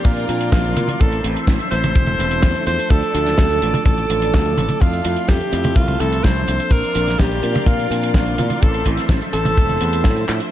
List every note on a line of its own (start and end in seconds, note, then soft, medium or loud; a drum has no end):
0.00 0.26 F3 medium
0.00 0.26 A#3 medium
0.00 0.26 C4 medium
0.00 0.26 D4 loud
0.00 0.98 A#4 medium
0.00 0.98 D5 medium
0.00 2.87 C6 loud
0.05 0.25 A#2 loud
0.05 0.52 F4 medium
0.05 kick loud
0.05 closed hi-hat medium
0.05 cabasa medium
0.16 closed hi-hat soft
0.16 cabasa soft
0.29 0.49 A#2 medium
0.29 0.74 F3 loud
0.29 0.74 A#3 medium
0.29 0.74 C4 medium
0.29 0.74 D4 loud
0.29 closed hi-hat loud
0.29 cabasa medium
0.41 closed hi-hat medium
0.41 cabasa medium
0.52 0.73 A#1 medium
0.52 1.02 F4 medium
0.52 kick loud
0.52 snare loud
0.52 closed hi-hat medium
0.52 cabasa medium
0.64 closed hi-hat soft
0.76 0.87 A#2 medium
0.76 1.21 E3 medium
0.76 1.21 A3 medium
0.76 1.21 C4 medium
0.76 1.21 E4 medium
0.76 closed hi-hat loud
0.76 high tom medium
0.76 cabasa medium
0.88 closed hi-hat medium
0.88 high tom medium
0.88 cabasa soft
1.00 1.21 A1 medium
1.00 1.24 A4 medium
1.00 6.68 A4 medium
1.00 2.89 C5 medium
1.00 2.89 E5 medium
1.00 kick loud
1.00 closed hi-hat medium
1.00 cabasa medium
1.12 closed hi-hat soft
1.12 cabasa medium
1.24 1.34 A1 loud
1.24 1.54 E3 medium
1.24 1.54 A3 medium
1.24 1.54 C4 medium
1.24 1.54 E4 medium
1.24 closed hi-hat loud
1.24 cabasa medium
1.36 closed hi-hat medium
1.36 cabasa soft
1.47 1.58 A1 medium
1.47 kick loud
1.47 snare loud
1.47 closed hi-hat medium
1.47 cabasa medium
1.59 closed hi-hat soft
1.59 cabasa soft
1.71 1.92 A1 medium
1.71 2.16 E3 medium
1.71 2.16 A3 medium
1.71 2.16 C4 medium
1.71 2.16 E4 loud
1.71 2.63 C5 loud
1.71 closed hi-hat medium
1.71 cabasa medium
1.84 closed hi-hat medium
1.84 high tom medium
1.84 cabasa medium
1.95 kick loud
1.95 closed hi-hat medium
1.95 cabasa medium
2.06 closed hi-hat soft
2.06 high tom medium
2.06 cabasa soft
2.19 2.40 E1 medium
2.19 2.64 E3 loud
2.19 2.64 A3 medium
2.19 2.64 C4 medium
2.19 2.64 E4 loud
2.19 closed hi-hat loud
2.19 cabasa medium
2.31 closed hi-hat medium
2.31 cabasa soft
2.42 2.53 E2 medium
2.42 kick loud
2.42 snare loud
2.42 closed hi-hat medium
2.42 cabasa medium
2.55 closed hi-hat soft
2.67 2.77 E2 medium
2.67 3.12 F3 medium
2.67 3.12 A3 medium
2.67 3.12 D4 medium
2.67 3.12 F4 medium
2.67 2.92 C5 loud
2.67 closed hi-hat loud
2.67 cabasa medium
2.79 closed hi-hat medium
2.79 cabasa soft
2.90 3.01 D2 loud
2.90 3.85 A4 loud
2.90 4.79 D5 medium
2.90 4.79 D6 medium
2.90 kick loud
2.90 closed hi-hat medium
2.90 cabasa medium
3.02 closed hi-hat soft
3.02 cabasa soft
3.14 3.35 D2 medium
3.14 3.45 F3 medium
3.14 3.45 A3 medium
3.14 3.45 D4 medium
3.14 3.45 F4 medium
3.14 closed hi-hat loud
3.14 cabasa medium
3.27 snare soft
3.27 closed hi-hat medium
3.27 cabasa soft
3.38 3.59 D2 loud
3.38 kick loud
3.38 snare loud
3.38 closed hi-hat medium
3.38 cabasa medium
3.50 closed hi-hat soft
3.50 cabasa soft
3.62 3.72 A1 medium
3.62 4.07 F3 medium
3.62 4.07 A3 medium
3.62 4.07 D4 medium
3.62 4.07 F4 loud
3.62 closed hi-hat medium
3.62 cabasa medium
3.74 closed hi-hat medium
3.74 high tom medium
3.74 cabasa medium
3.85 4.06 A1 loud
3.85 4.83 A4 loud
3.85 kick loud
3.85 closed hi-hat medium
3.85 cabasa medium
3.98 closed hi-hat soft
3.98 cabasa soft
4.10 4.30 A1 medium
4.10 4.55 F3 loud
4.10 4.55 A3 medium
4.10 4.55 D4 medium
4.10 4.55 F4 loud
4.10 closed hi-hat loud
4.10 cabasa medium
4.22 closed hi-hat medium
4.22 cabasa soft
4.33 4.54 D2 loud
4.33 kick loud
4.33 snare loud
4.33 closed hi-hat medium
4.33 cabasa medium
4.45 closed hi-hat soft
4.57 4.68 A1 medium
4.57 5.02 F3 medium
4.57 5.02 A3 medium
4.57 5.02 C4 medium
4.57 5.02 E4 medium
4.57 closed hi-hat loud
4.57 high tom medium
4.57 cabasa medium
4.69 closed hi-hat medium
4.69 high tom medium
4.69 cabasa soft
4.81 5.02 F2 loud
4.81 5.31 F4 loud
4.81 6.70 E5 medium
4.81 10.49 C6 medium
4.81 kick loud
4.81 closed hi-hat medium
4.81 cabasa medium
4.93 closed hi-hat soft
4.93 cabasa soft
5.05 5.15 F2 loud
5.05 5.35 F3 medium
5.05 5.35 A3 medium
5.05 5.35 C4 medium
5.05 5.35 E4 medium
5.05 closed hi-hat loud
5.05 cabasa medium
5.16 closed hi-hat medium
5.16 cabasa soft
5.29 5.39 F2 medium
5.29 5.78 G4 loud
5.29 kick loud
5.29 snare loud
5.29 closed hi-hat medium
5.29 cabasa medium
5.41 closed hi-hat soft
5.41 cabasa soft
5.52 5.73 F2 medium
5.52 5.97 F3 medium
5.52 5.97 A3 medium
5.52 5.97 C4 medium
5.52 5.97 E4 loud
5.52 closed hi-hat medium
5.52 cabasa medium
5.64 closed hi-hat medium
5.64 high tom medium
5.64 cabasa soft
5.76 5.97 C2 loud
5.76 6.02 F4 loud
5.76 kick loud
5.76 closed hi-hat medium
5.76 cabasa medium
5.88 closed hi-hat soft
5.88 high tom medium
5.88 cabasa medium
6.00 6.21 C2 loud
6.00 6.45 F3 loud
6.00 6.45 A3 medium
6.00 6.45 C4 medium
6.00 6.45 E4 loud
6.00 6.26 A4 loud
6.00 closed hi-hat loud
6.00 cabasa medium
6.12 closed hi-hat medium
6.12 cabasa soft
6.24 6.45 C2 loud
6.24 6.73 C5 loud
6.24 kick loud
6.24 snare loud
6.24 closed hi-hat medium
6.24 cabasa medium
6.36 closed hi-hat soft
6.47 6.58 C2 medium
6.47 6.93 F3 medium
6.47 6.93 A#3 medium
6.47 6.93 C4 medium
6.47 6.93 D4 medium
6.47 closed hi-hat loud
6.47 cabasa medium
6.60 closed hi-hat medium
6.60 cabasa soft
6.71 6.81 A#1 loud
6.71 8.60 A#4 medium
6.71 7.21 A#4 loud
6.71 8.60 D5 medium
6.71 8.60 F5 medium
6.71 kick loud
6.71 closed hi-hat medium
6.71 cabasa medium
6.83 closed hi-hat soft
6.83 cabasa medium
6.95 7.16 A#1 medium
6.95 7.25 F3 medium
6.95 7.26 A#3 medium
6.95 7.26 C4 medium
6.95 7.25 D4 medium
6.95 closed hi-hat loud
6.95 cabasa medium
7.07 snare soft
7.07 closed hi-hat medium
7.07 cabasa soft
7.19 7.40 A#1 loud
7.19 7.66 G4 medium
7.19 kick loud
7.19 snare loud
7.19 closed hi-hat medium
7.19 cabasa medium
7.31 closed hi-hat soft
7.31 cabasa soft
7.43 7.53 A#2 medium
7.43 7.88 F3 medium
7.43 7.88 A#3 medium
7.43 7.88 C4 medium
7.43 7.88 D4 loud
7.43 closed hi-hat medium
7.43 cabasa medium
7.55 closed hi-hat medium
7.55 high tom medium
7.55 cabasa medium
7.66 7.87 A#2 loud
7.66 8.11 F4 loud
7.66 kick loud
7.66 closed hi-hat medium
7.66 cabasa medium
7.78 closed hi-hat soft
7.78 cabasa soft
7.91 8.11 A#2 medium
7.91 8.35 F3 loud
7.91 8.35 A#3 medium
7.91 8.35 C4 medium
7.91 8.35 D4 loud
7.91 closed hi-hat loud
7.91 cabasa medium
8.02 closed hi-hat medium
8.02 cabasa soft
8.14 8.35 A#1 loud
8.14 8.63 F4 medium
8.14 kick loud
8.14 snare loud
8.14 closed hi-hat medium
8.14 cabasa medium
8.27 closed hi-hat medium
8.38 8.48 A#2 medium
8.38 8.83 E3 medium
8.38 8.83 A3 medium
8.38 8.83 C4 medium
8.38 8.83 E4 medium
8.38 closed hi-hat loud
8.38 high tom medium
8.38 cabasa medium
8.50 closed hi-hat medium
8.50 high tom medium
8.50 cabasa medium
8.62 8.83 A1 loud
8.62 8.86 A4 medium
8.62 10.51 A4 medium
8.62 10.51 C5 medium
8.62 10.51 E5 medium
8.62 kick loud
8.62 closed hi-hat medium
8.62 cabasa medium
8.74 closed hi-hat medium
8.74 cabasa medium
8.86 8.96 A1 loud
8.86 9.16 E3 medium
8.86 9.16 A3 medium
8.86 9.16 C4 medium
8.86 9.16 E4 medium
8.86 kick medium
8.86 closed hi-hat loud
8.86 cabasa medium
8.97 snare soft
8.97 closed hi-hat medium
8.97 cabasa medium
9.09 9.20 A1 loud
9.09 kick loud
9.09 snare loud
9.09 closed hi-hat medium
9.09 cabasa medium
9.21 closed hi-hat soft
9.21 cabasa soft
9.33 9.54 A1 medium
9.33 9.78 E3 medium
9.33 9.78 A3 medium
9.33 9.78 C4 medium
9.33 9.78 E4 medium
9.33 10.25 A4 loud
9.33 closed hi-hat medium
9.33 cabasa medium
9.45 closed hi-hat medium
9.45 high tom medium
9.45 cabasa medium
9.57 9.78 E1 loud
9.57 kick loud
9.57 closed hi-hat medium
9.57 cabasa medium
9.69 closed hi-hat soft
9.69 high tom medium
9.69 cabasa soft
9.81 10.02 E2 loud
9.81 10.11 E3 loud
9.81 10.11 A3 medium
9.81 10.11 C4 medium
9.81 10.11 E4 loud
9.81 closed hi-hat loud
9.81 cabasa medium
9.93 closed hi-hat medium
9.93 cabasa soft
10.04 10.25 A2 medium
10.04 kick loud
10.04 snare loud
10.04 closed hi-hat medium
10.04 cabasa medium
10.16 closed hi-hat soft
10.16 cabasa medium
10.29 10.39 A2 medium
10.29 10.51 F3 medium
10.29 10.51 A3 medium
10.29 10.51 D4 medium
10.29 10.51 F4 medium
10.29 clap medium
10.29 closed hi-hat loud
10.29 cabasa medium
10.40 closed hi-hat medium
10.40 cabasa soft